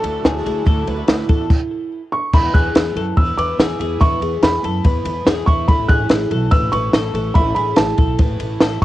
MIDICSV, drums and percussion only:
0, 0, Header, 1, 2, 480
1, 0, Start_track
1, 0, Tempo, 418118
1, 763, Time_signature, 4, 2, 24, 8
1, 10156, End_track
2, 0, Start_track
2, 0, Title_t, "Drums"
2, 43, Note_on_c, 9, 51, 68
2, 158, Note_off_c, 9, 51, 0
2, 287, Note_on_c, 9, 38, 109
2, 289, Note_on_c, 9, 51, 72
2, 402, Note_off_c, 9, 38, 0
2, 404, Note_off_c, 9, 51, 0
2, 531, Note_on_c, 9, 51, 57
2, 646, Note_off_c, 9, 51, 0
2, 764, Note_on_c, 9, 36, 96
2, 766, Note_on_c, 9, 51, 54
2, 879, Note_off_c, 9, 36, 0
2, 880, Note_off_c, 9, 51, 0
2, 1002, Note_on_c, 9, 51, 53
2, 1117, Note_off_c, 9, 51, 0
2, 1236, Note_on_c, 9, 51, 72
2, 1243, Note_on_c, 9, 38, 117
2, 1351, Note_off_c, 9, 51, 0
2, 1358, Note_off_c, 9, 38, 0
2, 1478, Note_on_c, 9, 51, 53
2, 1485, Note_on_c, 9, 36, 97
2, 1593, Note_off_c, 9, 51, 0
2, 1599, Note_off_c, 9, 36, 0
2, 1721, Note_on_c, 9, 49, 88
2, 1722, Note_on_c, 9, 36, 109
2, 1836, Note_off_c, 9, 49, 0
2, 1837, Note_off_c, 9, 36, 0
2, 2677, Note_on_c, 9, 49, 93
2, 2681, Note_on_c, 9, 36, 100
2, 2792, Note_off_c, 9, 49, 0
2, 2795, Note_off_c, 9, 36, 0
2, 2922, Note_on_c, 9, 36, 90
2, 2923, Note_on_c, 9, 51, 57
2, 3036, Note_off_c, 9, 36, 0
2, 3037, Note_off_c, 9, 51, 0
2, 3159, Note_on_c, 9, 51, 74
2, 3166, Note_on_c, 9, 38, 114
2, 3274, Note_off_c, 9, 51, 0
2, 3281, Note_off_c, 9, 38, 0
2, 3405, Note_on_c, 9, 51, 52
2, 3519, Note_off_c, 9, 51, 0
2, 3639, Note_on_c, 9, 51, 81
2, 3642, Note_on_c, 9, 36, 104
2, 3753, Note_off_c, 9, 51, 0
2, 3757, Note_off_c, 9, 36, 0
2, 3885, Note_on_c, 9, 51, 69
2, 4000, Note_off_c, 9, 51, 0
2, 4127, Note_on_c, 9, 38, 122
2, 4129, Note_on_c, 9, 51, 76
2, 4242, Note_off_c, 9, 38, 0
2, 4244, Note_off_c, 9, 51, 0
2, 4369, Note_on_c, 9, 51, 56
2, 4484, Note_off_c, 9, 51, 0
2, 4606, Note_on_c, 9, 36, 100
2, 4607, Note_on_c, 9, 51, 62
2, 4721, Note_off_c, 9, 36, 0
2, 4722, Note_off_c, 9, 51, 0
2, 4845, Note_on_c, 9, 51, 54
2, 4960, Note_off_c, 9, 51, 0
2, 5080, Note_on_c, 9, 51, 75
2, 5088, Note_on_c, 9, 38, 116
2, 5195, Note_off_c, 9, 51, 0
2, 5203, Note_off_c, 9, 38, 0
2, 5327, Note_on_c, 9, 51, 55
2, 5442, Note_off_c, 9, 51, 0
2, 5562, Note_on_c, 9, 51, 75
2, 5567, Note_on_c, 9, 36, 98
2, 5677, Note_off_c, 9, 51, 0
2, 5681, Note_off_c, 9, 36, 0
2, 5802, Note_on_c, 9, 51, 71
2, 5917, Note_off_c, 9, 51, 0
2, 6046, Note_on_c, 9, 38, 117
2, 6048, Note_on_c, 9, 51, 73
2, 6161, Note_off_c, 9, 38, 0
2, 6163, Note_off_c, 9, 51, 0
2, 6285, Note_on_c, 9, 36, 85
2, 6288, Note_on_c, 9, 51, 57
2, 6400, Note_off_c, 9, 36, 0
2, 6403, Note_off_c, 9, 51, 0
2, 6526, Note_on_c, 9, 51, 59
2, 6527, Note_on_c, 9, 36, 95
2, 6641, Note_off_c, 9, 36, 0
2, 6641, Note_off_c, 9, 51, 0
2, 6763, Note_on_c, 9, 51, 56
2, 6765, Note_on_c, 9, 36, 91
2, 6877, Note_off_c, 9, 51, 0
2, 6880, Note_off_c, 9, 36, 0
2, 6995, Note_on_c, 9, 51, 77
2, 7002, Note_on_c, 9, 38, 113
2, 7110, Note_off_c, 9, 51, 0
2, 7117, Note_off_c, 9, 38, 0
2, 7242, Note_on_c, 9, 51, 53
2, 7357, Note_off_c, 9, 51, 0
2, 7475, Note_on_c, 9, 51, 78
2, 7483, Note_on_c, 9, 36, 99
2, 7590, Note_off_c, 9, 51, 0
2, 7598, Note_off_c, 9, 36, 0
2, 7720, Note_on_c, 9, 51, 66
2, 7835, Note_off_c, 9, 51, 0
2, 7960, Note_on_c, 9, 38, 127
2, 7963, Note_on_c, 9, 51, 77
2, 8075, Note_off_c, 9, 38, 0
2, 8077, Note_off_c, 9, 51, 0
2, 8205, Note_on_c, 9, 51, 58
2, 8320, Note_off_c, 9, 51, 0
2, 8439, Note_on_c, 9, 51, 58
2, 8442, Note_on_c, 9, 36, 92
2, 8554, Note_off_c, 9, 51, 0
2, 8557, Note_off_c, 9, 36, 0
2, 8679, Note_on_c, 9, 51, 55
2, 8793, Note_off_c, 9, 51, 0
2, 8911, Note_on_c, 9, 51, 77
2, 8919, Note_on_c, 9, 38, 110
2, 9026, Note_off_c, 9, 51, 0
2, 9034, Note_off_c, 9, 38, 0
2, 9158, Note_on_c, 9, 51, 56
2, 9166, Note_on_c, 9, 36, 94
2, 9272, Note_off_c, 9, 51, 0
2, 9280, Note_off_c, 9, 36, 0
2, 9397, Note_on_c, 9, 51, 79
2, 9404, Note_on_c, 9, 36, 95
2, 9512, Note_off_c, 9, 51, 0
2, 9519, Note_off_c, 9, 36, 0
2, 9640, Note_on_c, 9, 51, 69
2, 9755, Note_off_c, 9, 51, 0
2, 9878, Note_on_c, 9, 38, 115
2, 9880, Note_on_c, 9, 51, 69
2, 9993, Note_off_c, 9, 38, 0
2, 9995, Note_off_c, 9, 51, 0
2, 10156, End_track
0, 0, End_of_file